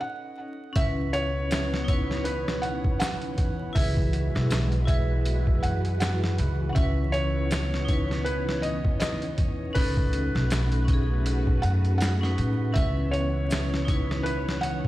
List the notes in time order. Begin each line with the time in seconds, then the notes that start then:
Already playing: D#5
0.01 F#5
0.73 C#2 E3 B3 C#4 E4 B4 C#5 E5, kick, closed hi-hat
0.81 B4
1.13 C#5, closed hi-hat
1.51 snare, closed hi-hat, maracas
1.74 snare
1.85 D#4 E4, kick, closed hi-hat
1.93 B4
2.11 snare
2.24 B4, closed hi-hat
2.48 snare
2.62 F#5, closed hi-hat
2.84 kick
3.00 F#5, snare, closed hi-hat, maracas
3.22 closed hi-hat
3.38 E2, kick, closed hi-hat
3.73 C#2 G#3 E4 F#4 B4 E5, kick, open hi-hat
3.77 G#4
3.81 B4
3.97 kick
4.13 closed hi-hat
4.35 B1, snare
4.51 snare, closed hi-hat, maracas
4.72 closed hi-hat
4.85 E4 E5, kick, closed hi-hat
4.90 G#4
4.94 B4
5.26 closed hi-hat
5.47 kick
5.63 F#2 F#5, closed hi-hat
5.85 closed hi-hat
6.00 F#5, snare, closed hi-hat, maracas
6.24 snare
6.38 C#2, closed hi-hat
6.69 C#4 F#5
6.75 C#2 B3 E4 C#5 E5, kick, closed hi-hat
6.81 B4
7.12 C#5, closed hi-hat
7.51 snare, closed hi-hat, maracas
7.74 snare
7.85 D#4, kick, closed hi-hat
7.89 E4
7.93 B4
8.11 snare
8.25 B4, closed hi-hat
8.49 snare
8.62 D#5, closed hi-hat
8.85 kick
9.00 D#5, snare, closed hi-hat, maracas
9.22 closed hi-hat
9.38 E2, kick, closed hi-hat
9.73 C#2 A3 C#4 D#4 F#4 B4, kick, open hi-hat
9.81 A4
9.97 kick
10.13 closed hi-hat
10.35 B1, snare
10.50 snare, closed hi-hat, maracas
10.72 closed hi-hat
10.85 C#4, kick, closed hi-hat
10.89 D#4
10.93 G#4
11.26 closed hi-hat
11.47 kick
11.62 F#2 F#5, closed hi-hat
11.85 closed hi-hat
11.98 F#5, closed hi-hat, maracas
12.02 snare
12.21 C#4 D#4, snare
12.25 B4
12.38 A2, closed hi-hat
12.73 C#2 E3 B3 C#4 C#5 E5, kick, closed hi-hat
12.77 E4
12.81 B4
13.11 C#5, closed hi-hat
13.51 snare, closed hi-hat, maracas
13.74 snare
13.85 D#4, kick, closed hi-hat
13.90 E4 B4
14.11 snare
14.23 B4, closed hi-hat
14.49 snare
14.61 F#5, closed hi-hat
14.85 kick